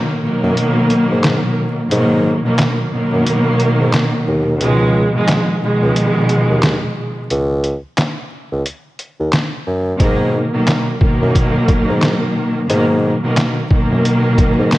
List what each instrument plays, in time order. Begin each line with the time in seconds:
Already playing: string section B2 D#3 F#3 A#3
0.21 string section B2 D#3 F#3 A#3
0.43 bassoon F#2
0.57 closed hi-hat
0.90 closed hi-hat
1.10 bassoon G#2
1.24 snare, clap, closed hi-hat
1.89 bassoon G#2, string section B2 D#3 F#3 A#3, closed hi-hat
2.43 string section B2 D#3 F#3 A#3
2.59 snare, clap, closed hi-hat
2.91 string section B2 D#3 F#3 A#3
3.13 bassoon F#2
3.27 closed hi-hat
3.60 closed hi-hat
3.80 bassoon G#2
3.93 snare, clap, closed hi-hat
4.27 bassoon D#2
4.60 bassoon C#2, string section B2 D#3 F3 G#3, closed hi-hat
5.13 string section B2 D#3 F3 G#3
5.28 snare, clap, closed hi-hat
5.60 string section B2 D#3 F3 G#3
5.82 bassoon C#2
5.96 closed hi-hat
6.29 closed hi-hat
6.50 bassoon D#2
6.63 snare, clap, closed hi-hat
7.30 bassoon C#2, closed hi-hat
7.64 closed hi-hat
7.98 snare, clap, closed hi-hat
8.52 bassoon C#2
8.66 closed hi-hat
8.99 closed hi-hat
9.19 bassoon D#2
9.33 snare, clap, closed hi-hat
9.67 bassoon F#2
9.98 bassoon G#2, string section B2 D#3 F#3 A#3, kick, closed hi-hat
10.52 string section B2 D#3 F#3 A#3
10.67 snare, clap, closed hi-hat
11.00 string section B2 D#3 F#3 A#3, kick
11.21 bassoon F#2
11.35 kick, closed hi-hat
11.68 kick, closed hi-hat
11.89 bassoon G#2
12.02 snare, clap, closed hi-hat
12.67 bassoon G#2, string section B2 D#3 F#3 A#3, closed hi-hat
13.22 string section B2 D#3 F#3 A#3
13.37 snare, clap, closed hi-hat
13.69 string section B2 D#3 F#3 A#3, kick
13.91 bassoon F#2
14.05 closed hi-hat
14.38 kick, closed hi-hat
14.58 bassoon G#2
14.72 snare, clap, closed hi-hat